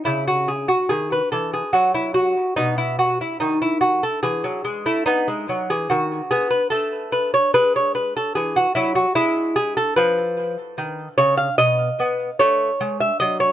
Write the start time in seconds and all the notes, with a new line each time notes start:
0.05 C#3 E4
0.28 F#4
0.48 G#4
0.68 F#4
0.89 D#3 G#4
1.12 B4
1.32 E3 A4
1.53 G#4
1.73 F#3 F#4
1.94 E4
2.14 F#4
2.56 B2 D#4
2.78 E4
2.99 F#4
3.21 E4
3.40 D#3 D#4
3.62 E4
3.81 F#4
4.03 A4
4.23 E3 G#4
4.44 F#3
4.65 G#3
4.86 A3 E4
5.06 B3 D#4
5.28 G#3
5.49 F#3
5.70 E3 G#4
5.90 D#3 F#4
6.31 B3 G#4
6.50 B4
6.70 A3 A4
7.12 B4
7.34 C#5
7.54 G#3 B4
7.76 C#5
7.95 B4
8.17 A4
8.35 E3 G#4
8.56 F#4
8.75 F#3 E4
8.95 F#4
9.15 G#3 E4
9.56 G#4
9.77 A4
9.96 F3 B4
10.78 D#3
11.18 C#3 C#5
11.37 F5
11.58 B2 D#5
12.00 B3
12.39 A3 C#5
12.81 G#3
13.00 E5
13.20 F#3 D#5
13.40 C#5